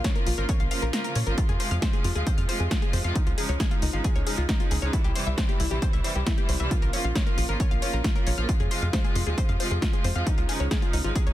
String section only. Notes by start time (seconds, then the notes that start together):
0.04 C#3 F3 A#3 F4
0.15 C#3 F3 A#3 F4
0.38 C#3 F3 A#3 F4
0.49 C#3 F3 A#3 F4
0.71 C#3 F3 A#3 F4
0.93 C#3 F3 A#3 F4
1.04 C#3 F3 A#3 F4
1.26 C#3 F3 A#3 F4
1.38 C3 F3 G#3 F4
1.60 C3 F3 G#3 F4
1.82 C3 F3 G#3 F4
1.93 C3 F3 G#3 F4
2.15 C3 F3 G#3 F4
2.27 C3 F3 G#3 F4
2.49 C3 F3 G#3 F4
2.71 C3 F3 G#3 F4
2.82 C3 F3 G#3 F4
3.04 C3 F3 G#3 F4
3.16 C#3 F3 G#3 D#4
3.38 C#3 F3 G#3 D#4
3.60 C#3 F3 G#3 D#4
3.71 C#3 F3 G#3 D#4
3.93 C#3 F3 G#3 D#4
4.05 C#3 F3 G#3 D#4
4.27 C#3 F3 G#3 D#4
4.49 C#3 F3 G#3 D#4
4.60 C#3 F3 G#3 D#4
4.82 C#3 F3 G#3 D#4
4.93 C3 E3 G3 E4
5.16 C3 E3 G3 E4
5.38 C3 E3 G3 E4
5.49 C3 E3 G3 E4
5.71 C3 E3 G3 E4
5.82 C3 E3 G3 E4
6.04 C3 E3 G3 E4
6.26 C3 E3 G3 E4
6.38 C3 E3 G3 E4
6.60 C3 E3 G3 E4
6.71 C#3 F3 A#3 F4
6.93 C#3 F3 A#3 F4
7.15 C#3 F3 A#3 F4
7.27 C#3 F3 A#3 F4
7.49 C#3 F3 A#3 F4
7.60 C#3 F3 A#3 F4
7.82 C#3 F3 A#3 F4
8.04 C#3 F3 A#3 F4
8.15 C#3 F3 A#3 F4
8.38 C#3 F3 A#3 F4
8.49 C3 F3 G#3 F4
8.71 C3 F3 G#3 F4
8.93 C3 F3 G#3 F4
9.04 C3 F3 G#3 F4
9.27 C3 F3 G#3 F4
9.38 C3 F3 G#3 F4
9.60 C3 F3 G#3 F4
9.82 C3 F3 G#3 F4
9.94 C3 F3 G#3 F4
10.16 C3 F3 G#3 F4
10.27 C#3 F3 G#3 D#4
10.49 C#3 F3 G#3 D#4
10.71 C#3 F3 G#3 D#4
10.82 C#3 F3 G#3 D#4
11.05 C#3 F3 G#3 D#4
11.16 C#3 F3 G#3 D#4